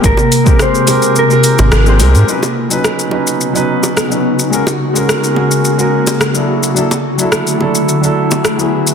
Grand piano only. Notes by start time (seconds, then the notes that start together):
0.01 G#3 C4 G4
0.06 A#4
0.44 G#3 C4 G4 A#4
0.86 G#3 C4 G4
0.90 A#4
1.29 G#3 C4 G4
1.33 A#4
1.85 G#3 C4 G4
1.89 C5
1.99 G#3 C4 G4 A#4
2.26 F#3 C#4 D#4 B4
2.69 F#3 C#4 D#4 B4
3.10 F#3 C#4 D#4 B4
3.53 F#3 C#4 D#4 B4
4.09 F#3 C#4 D#4 B4
4.50 G#3 C#4 F#4
4.54 A#4
4.93 G#3 C#4 F#4 A#4
5.34 G#3 C#4 F#4 A#4
5.77 G#3 C#4 F#4 A#4
6.33 F#3 D4 E4 A4
6.74 F#3 D4 E4 A4
7.17 F#3 D4 E4
7.21 A4
7.58 F#3 D4 E4 A4
8.01 F#3 D4 E4 A4
8.57 F#3 B3 E4 G#4